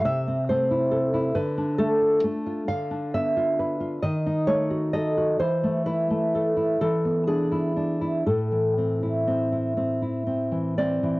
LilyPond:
\new Staff \with { instrumentName = "Nylon-string guitar" } { \time 6/8 \key a \minor \tempo 4. = 43 << { e''8 c''4 b'8 a'4 | f''8 e''4 dis''8 cis''8 dis''8 | c''8 b'4 a'8 gis'4 | a'2~ a'8 d''8 | } \\ { c16 c'16 a16 e'16 a'16 e'16 d16 d'16 a16 f'16 a16 f'16 | d16 d'16 b16 f'16 b'16 f'16 dis16 dis'16 a16 fis'16 a'16 fis'16 | e16 a16 e'16 a16 a'16 e'16 e16 b16 d'16 e'16 d'16 e'16 | a,16 e16 c'16 e'16 c'16 e'16 c'16 e'16 c'16 e16 c'16 e16 | } >> }